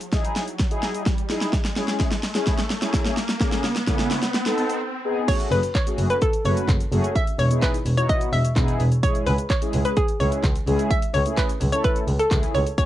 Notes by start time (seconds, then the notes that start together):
Already playing: riser
0.01 closed hi-hat, shaker
0.12 D#4 E4 G#4, kick, snare, closed hi-hat, shaker
0.24 closed hi-hat, shaker
0.36 snare, open hi-hat, shaker
0.48 closed hi-hat, shaker
0.59 kick, snare, closed hi-hat, shaker
0.71 D#4 E4 G#4, closed hi-hat, shaker
0.83 snare, open hi-hat, shaker
0.94 closed hi-hat, shaker
1.06 kick, snare, closed hi-hat, shaker
1.18 closed hi-hat, shaker
1.29 D#4 E4 G#4, snare, open hi-hat, shaker
1.41 snare, closed hi-hat, shaker
1.53 kick, snare, closed hi-hat, shaker
1.65 snare, closed hi-hat, shaker
1.76 C#4 E4 G#4, snare, open hi-hat, shaker
1.88 snare, closed hi-hat, shaker
2.00 kick, snare, closed hi-hat, shaker
2.12 snare, closed hi-hat, shaker
2.23 snare, open hi-hat, shaker
2.35 C#4 E4 G#4, snare, closed hi-hat, shaker
2.47 kick, snare, closed hi-hat, shaker
2.58 snare, closed hi-hat, shaker
2.70 snare, open hi-hat, shaker
2.82 C#4 E4 G#4, snare, closed hi-hat, shaker
2.94 kick, snare, closed hi-hat, shaker
3.06 snare, closed hi-hat, shaker
3.17 snare, open hi-hat, shaker
3.29 snare, closed hi-hat, shaker
3.40 C#3 A3 C#4 G#4, kick, snare, closed hi-hat, shaker
3.52 snare, closed hi-hat, shaker
3.64 snare, open hi-hat, shaker
3.76 snare, closed hi-hat, shaker
3.87 C#3 A3 C#4 E4, kick, snare, closed hi-hat, shaker
3.99 snare, closed hi-hat, shaker
4.11 snare, open hi-hat, shaker
4.22 snare, closed hi-hat, shaker
4.34 snare, closed hi-hat, shaker
4.46 B3 D#4 A4, snare, closed hi-hat, shaker
4.58 open hi-hat, shaker
4.69 closed hi-hat, shaker
5.05 B3 D#4 G#4
5.28 A3 C#4 F#4 G#4 C#5, kick, closed hi-hat, crash, shaker
5.40 closed hi-hat, shaker
5.51 F#1 B4, open hi-hat, shaker
5.63 closed hi-hat, shaker
5.75 C#5, kick, clap, closed hi-hat, shaker
5.86 A3 C#4 F#4 G#4, closed hi-hat, shaker
5.98 F#1, open hi-hat, shaker
6.10 B4, closed hi-hat, shaker
6.22 A4, kick, closed hi-hat, shaker
6.33 closed hi-hat, shaker
6.45 F#1 A3 C#4 F#4 B4 C#5, open hi-hat, shaker
6.57 closed hi-hat, shaker
6.69 F#1, kick, clap, closed hi-hat, shaker
6.80 closed hi-hat, shaker
6.92 F#1 A3 C#4 F#4 G#4, open hi-hat, shaker
7.04 closed hi-hat, shaker
7.16 E5, kick, closed hi-hat, shaker
7.27 closed hi-hat, shaker
7.39 E1 C#5, open hi-hat, shaker
7.50 B3 D#4 E4 G#4, closed hi-hat, shaker
7.62 B4, kick, clap, closed hi-hat, shaker
7.74 closed hi-hat, shaker
7.86 E1, open hi-hat, shaker
7.97 B3 D#4 E4 F#4 C#5, closed hi-hat, shaker
8.09 D#5, kick, closed hi-hat, shaker
8.21 closed hi-hat, shaker
8.33 E1 E5, open hi-hat, shaker
8.45 closed hi-hat, shaker
8.56 E1 B3 D#4 E4 G#4, kick, clap, closed hi-hat, shaker
8.68 closed hi-hat, shaker
8.80 E1, open hi-hat, shaker
8.92 closed hi-hat, shaker
9.03 G#3 C#4 E4 G#4 C#5, kick, closed hi-hat, shaker
9.15 closed hi-hat, shaker
9.27 C#2 B4, open hi-hat, shaker
9.38 closed hi-hat, shaker
9.50 C#5, kick, clap, closed hi-hat, shaker
9.62 G#3 C#4 E4 G#4, closed hi-hat, shaker
9.73 C#2, open hi-hat, shaker
9.85 B4, closed hi-hat, shaker
9.97 G#4, kick, closed hi-hat, shaker
10.08 closed hi-hat, shaker
10.20 C#2 G#3 C#4 E4 G#4 C#5, open hi-hat, shaker
10.32 closed hi-hat, shaker
10.44 C#2, kick, clap, closed hi-hat, shaker
10.56 closed hi-hat, shaker
10.67 C#2 G#3 C#4 E4 G#4, open hi-hat, shaker
10.79 closed hi-hat, shaker
10.91 E5, kick, closed hi-hat, shaker
11.02 closed hi-hat, shaker
11.14 C#2 C#5, open hi-hat, shaker
11.26 A3 C#4 E4 G#4, closed hi-hat, shaker
11.37 B4, kick, clap, closed hi-hat, shaker
11.49 closed hi-hat, shaker
11.61 C#2, open hi-hat, shaker
11.72 A3 C#4 E4 A4 C#5, closed hi-hat, shaker
11.84 B4, kick, closed hi-hat, shaker
11.96 closed hi-hat, shaker
12.08 C#2, open hi-hat, shaker
12.19 A4, closed hi-hat, shaker
12.31 C#2 A3 C#4 E4 G#4, kick, clap, closed hi-hat, shaker
12.43 closed hi-hat, shaker
12.55 C#2 C#5, open hi-hat, shaker
12.67 closed hi-hat, shaker
12.78 A3 C#4 F#4 G#4 C#5, kick, closed hi-hat, shaker